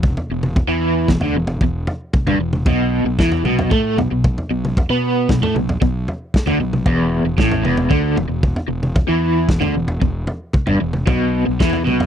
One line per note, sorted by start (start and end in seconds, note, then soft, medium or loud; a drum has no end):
0.00 0.15 E1 medium
0.00 0.12 E2 medium
0.00 kick loud
0.00 mid tom medium
0.17 floor tom medium
0.29 0.54 E1 medium
0.29 0.52 E2 medium
0.43 mid tom medium
0.56 kick loud
0.56 floor tom medium
0.68 1.05 E2 medium
0.68 1.07 E3 loud
1.08 1.20 E1 medium
1.08 1.22 E2 medium
1.08 kick medium
1.08 snare medium
1.20 1.32 D2 medium
1.20 1.35 D3 medium
1.20 floor tom medium
1.33 1.58 E1 medium
1.33 1.57 E2 medium
1.47 floor tom medium
1.61 1.86 E1 medium
1.61 1.83 E2 medium
1.61 kick loud
1.87 floor tom medium
2.13 kick loud
2.13 mid tom medium
2.25 2.38 G1 medium
2.25 2.40 G2 loud
2.25 floor tom medium
2.39 2.64 E1 medium
2.39 2.61 E2 medium
2.53 mid tom medium
2.66 3.03 B1 medium
2.66 3.05 B2 loud
2.66 kick loud
2.66 floor tom medium
3.04 3.17 B1 medium
3.04 3.19 B2 medium
3.19 3.43 E2 medium
3.19 3.45 E3 loud
3.19 kick loud
3.19 snare medium
3.32 floor tom medium
3.44 3.69 B1 loud
3.44 3.71 B2 medium
3.44 mid tom medium
3.59 floor tom medium
3.71 3.96 A2 loud
3.71 3.97 A3 loud
3.71 kick loud
3.97 4.09 B1 medium
3.97 4.10 B2 medium
3.97 floor tom medium
4.11 4.35 B1 medium
4.11 4.32 B2 medium
4.24 kick loud
4.24 mid tom medium
4.38 floor tom medium
4.49 4.74 B1 medium
4.49 4.71 B2 medium
4.65 mid tom medium
4.77 kick loud
4.77 floor tom medium
4.89 5.26 B2 medium
4.89 5.28 B3 loud
5.29 5.41 B1 medium
5.29 5.42 B2 medium
5.29 kick loud
5.29 snare medium
5.41 5.54 A2 medium
5.41 5.55 A3 loud
5.41 floor tom medium
5.55 5.79 B1 medium
5.55 5.76 B2 medium
5.55 mid tom medium
5.69 floor tom medium
5.81 6.06 B1 medium
5.81 6.02 B2 medium
5.81 kick loud
6.08 floor tom medium
6.34 kick loud
6.34 snare medium
6.46 6.59 D2 medium
6.46 6.59 D3 loud
6.46 floor tom medium
6.60 6.84 B1 medium
6.60 6.81 B2 medium
6.73 mid tom medium
6.86 7.23 E1 medium
6.86 7.25 E2 loud
6.86 kick loud
6.86 floor tom medium
7.24 7.37 E1 medium
7.24 7.39 E2 medium
7.38 7.63 A1 medium
7.38 7.64 A2 loud
7.38 kick loud
7.38 snare medium
7.51 floor tom medium
7.64 7.89 E1 loud
7.64 7.90 E2 medium
7.64 mid tom medium
7.77 floor tom medium
7.90 8.16 D2 medium
7.90 8.16 D3 loud
7.90 kick loud
8.16 8.29 E1 medium
8.16 8.27 E2 medium
8.16 floor tom medium
8.28 8.54 E1 medium
8.28 8.51 E2 medium
8.43 kick loud
8.43 mid tom medium
8.56 floor tom medium
8.68 8.94 E1 medium
8.68 8.90 E2 medium
8.83 mid tom medium
8.96 kick loud
8.96 floor tom medium
9.08 9.46 E2 medium
9.08 9.48 E3 loud
9.48 9.61 E1 medium
9.48 9.62 E2 medium
9.48 kick loud
9.48 snare medium
9.60 9.74 D2 medium
9.60 9.74 D3 loud
9.60 floor tom medium
9.74 10.00 E1 medium
9.74 9.96 E2 medium
9.88 floor tom medium
10.01 10.26 E1 medium
10.01 10.23 E2 medium
10.01 kick loud
10.27 floor tom medium
10.53 kick loud
10.53 mid tom medium
10.67 10.81 G1 medium
10.67 10.80 G2 loud
10.67 floor tom medium
10.81 11.06 E1 medium
10.81 11.02 E2 medium
10.93 mid tom medium
11.07 11.44 B1 medium
11.07 11.45 B2 loud
11.07 kick loud
11.07 floor tom medium
11.46 11.60 B1 medium
11.46 11.60 B2 medium
11.60 11.85 E2 medium
11.60 11.84 E3 loud
11.60 kick loud
11.60 snare medium
11.73 floor tom medium
11.85 12.06 B1 loud
11.85 12.06 B2 medium
11.85 mid tom medium
12.00 floor tom medium